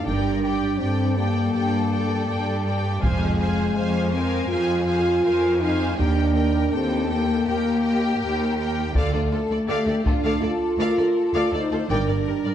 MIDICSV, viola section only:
0, 0, Header, 1, 2, 480
1, 0, Start_track
1, 0, Tempo, 739827
1, 41, Time_signature, 4, 2, 24, 8
1, 8140, End_track
2, 0, Start_track
2, 0, Title_t, "Viola section"
2, 0, Program_c, 0, 48
2, 40, Note_on_c, 0, 74, 42
2, 42, Note_on_c, 0, 67, 43
2, 270, Note_off_c, 0, 67, 0
2, 270, Note_off_c, 0, 74, 0
2, 277, Note_on_c, 0, 67, 33
2, 277, Note_on_c, 0, 74, 37
2, 506, Note_off_c, 0, 67, 0
2, 507, Note_off_c, 0, 74, 0
2, 513, Note_on_c, 0, 67, 39
2, 515, Note_on_c, 0, 74, 38
2, 750, Note_off_c, 0, 74, 0
2, 753, Note_off_c, 0, 67, 0
2, 758, Note_on_c, 0, 74, 35
2, 760, Note_on_c, 0, 67, 36
2, 991, Note_off_c, 0, 67, 0
2, 992, Note_off_c, 0, 74, 0
2, 999, Note_on_c, 0, 67, 40
2, 1000, Note_on_c, 0, 74, 37
2, 1232, Note_off_c, 0, 67, 0
2, 1233, Note_off_c, 0, 74, 0
2, 1240, Note_on_c, 0, 67, 36
2, 1241, Note_on_c, 0, 74, 36
2, 1475, Note_off_c, 0, 67, 0
2, 1475, Note_off_c, 0, 74, 0
2, 1483, Note_on_c, 0, 67, 37
2, 1483, Note_on_c, 0, 74, 39
2, 1711, Note_off_c, 0, 67, 0
2, 1711, Note_off_c, 0, 74, 0
2, 1719, Note_on_c, 0, 67, 43
2, 1719, Note_on_c, 0, 74, 43
2, 1957, Note_off_c, 0, 67, 0
2, 1957, Note_off_c, 0, 74, 0
2, 1965, Note_on_c, 0, 72, 49
2, 1965, Note_on_c, 0, 77, 43
2, 2195, Note_off_c, 0, 72, 0
2, 2196, Note_off_c, 0, 77, 0
2, 2203, Note_on_c, 0, 72, 36
2, 2204, Note_on_c, 0, 77, 38
2, 2436, Note_off_c, 0, 72, 0
2, 2437, Note_off_c, 0, 77, 0
2, 2444, Note_on_c, 0, 72, 39
2, 2445, Note_on_c, 0, 77, 42
2, 2680, Note_off_c, 0, 72, 0
2, 2680, Note_off_c, 0, 77, 0
2, 2689, Note_on_c, 0, 77, 40
2, 2690, Note_on_c, 0, 72, 39
2, 2916, Note_off_c, 0, 77, 0
2, 2918, Note_off_c, 0, 72, 0
2, 2924, Note_on_c, 0, 77, 40
2, 2926, Note_on_c, 0, 72, 42
2, 3155, Note_off_c, 0, 77, 0
2, 3158, Note_off_c, 0, 72, 0
2, 3163, Note_on_c, 0, 77, 39
2, 3165, Note_on_c, 0, 72, 39
2, 3396, Note_off_c, 0, 72, 0
2, 3396, Note_off_c, 0, 77, 0
2, 3404, Note_on_c, 0, 72, 46
2, 3404, Note_on_c, 0, 77, 42
2, 3635, Note_off_c, 0, 72, 0
2, 3636, Note_off_c, 0, 77, 0
2, 3643, Note_on_c, 0, 72, 43
2, 3643, Note_on_c, 0, 77, 46
2, 3879, Note_off_c, 0, 72, 0
2, 3880, Note_off_c, 0, 77, 0
2, 3882, Note_on_c, 0, 67, 49
2, 3883, Note_on_c, 0, 70, 48
2, 4112, Note_off_c, 0, 67, 0
2, 4114, Note_off_c, 0, 70, 0
2, 4120, Note_on_c, 0, 67, 43
2, 4122, Note_on_c, 0, 70, 42
2, 4355, Note_off_c, 0, 67, 0
2, 4359, Note_off_c, 0, 70, 0
2, 4363, Note_on_c, 0, 58, 47
2, 4363, Note_on_c, 0, 67, 45
2, 4592, Note_off_c, 0, 67, 0
2, 4593, Note_off_c, 0, 58, 0
2, 4600, Note_on_c, 0, 67, 43
2, 4601, Note_on_c, 0, 58, 44
2, 4832, Note_off_c, 0, 67, 0
2, 4838, Note_off_c, 0, 58, 0
2, 4840, Note_on_c, 0, 67, 46
2, 4842, Note_on_c, 0, 70, 44
2, 5078, Note_off_c, 0, 67, 0
2, 5079, Note_off_c, 0, 70, 0
2, 5087, Note_on_c, 0, 67, 42
2, 5087, Note_on_c, 0, 70, 43
2, 5316, Note_off_c, 0, 70, 0
2, 5317, Note_off_c, 0, 67, 0
2, 5323, Note_on_c, 0, 70, 44
2, 5325, Note_on_c, 0, 67, 46
2, 5555, Note_off_c, 0, 70, 0
2, 5556, Note_off_c, 0, 67, 0
2, 5563, Note_on_c, 0, 70, 46
2, 5564, Note_on_c, 0, 67, 47
2, 5799, Note_off_c, 0, 70, 0
2, 5800, Note_off_c, 0, 67, 0
2, 5805, Note_on_c, 0, 69, 63
2, 5806, Note_on_c, 0, 74, 67
2, 5917, Note_off_c, 0, 69, 0
2, 5917, Note_off_c, 0, 74, 0
2, 5925, Note_on_c, 0, 69, 43
2, 5926, Note_off_c, 0, 69, 0
2, 5926, Note_on_c, 0, 69, 42
2, 5974, Note_off_c, 0, 69, 0
2, 6042, Note_on_c, 0, 65, 36
2, 6043, Note_on_c, 0, 69, 38
2, 6091, Note_off_c, 0, 65, 0
2, 6091, Note_off_c, 0, 69, 0
2, 6163, Note_on_c, 0, 69, 41
2, 6212, Note_off_c, 0, 69, 0
2, 6277, Note_on_c, 0, 69, 59
2, 6277, Note_on_c, 0, 74, 58
2, 6392, Note_off_c, 0, 69, 0
2, 6392, Note_off_c, 0, 74, 0
2, 6402, Note_on_c, 0, 69, 37
2, 6403, Note_off_c, 0, 69, 0
2, 6403, Note_on_c, 0, 69, 39
2, 6451, Note_off_c, 0, 69, 0
2, 6526, Note_on_c, 0, 65, 36
2, 6527, Note_on_c, 0, 69, 43
2, 6574, Note_off_c, 0, 65, 0
2, 6574, Note_off_c, 0, 69, 0
2, 6646, Note_on_c, 0, 69, 56
2, 6648, Note_on_c, 0, 74, 52
2, 6755, Note_off_c, 0, 69, 0
2, 6758, Note_off_c, 0, 74, 0
2, 6763, Note_on_c, 0, 69, 40
2, 6811, Note_off_c, 0, 69, 0
2, 6999, Note_on_c, 0, 74, 49
2, 7001, Note_on_c, 0, 69, 47
2, 7113, Note_off_c, 0, 74, 0
2, 7114, Note_off_c, 0, 69, 0
2, 7125, Note_on_c, 0, 69, 48
2, 7128, Note_off_c, 0, 69, 0
2, 7128, Note_on_c, 0, 69, 41
2, 7175, Note_off_c, 0, 69, 0
2, 7362, Note_on_c, 0, 69, 49
2, 7363, Note_on_c, 0, 74, 56
2, 7474, Note_off_c, 0, 69, 0
2, 7475, Note_off_c, 0, 74, 0
2, 7483, Note_on_c, 0, 69, 50
2, 7531, Note_off_c, 0, 69, 0
2, 7601, Note_on_c, 0, 69, 43
2, 7602, Note_on_c, 0, 65, 44
2, 7650, Note_off_c, 0, 65, 0
2, 7650, Note_off_c, 0, 69, 0
2, 7719, Note_on_c, 0, 70, 53
2, 7719, Note_on_c, 0, 74, 50
2, 7832, Note_off_c, 0, 70, 0
2, 7832, Note_off_c, 0, 74, 0
2, 7840, Note_on_c, 0, 70, 38
2, 7889, Note_off_c, 0, 70, 0
2, 7960, Note_on_c, 0, 70, 39
2, 7962, Note_on_c, 0, 67, 32
2, 8009, Note_off_c, 0, 70, 0
2, 8010, Note_off_c, 0, 67, 0
2, 8083, Note_on_c, 0, 70, 34
2, 8085, Note_off_c, 0, 70, 0
2, 8085, Note_on_c, 0, 70, 40
2, 8133, Note_off_c, 0, 70, 0
2, 8140, End_track
0, 0, End_of_file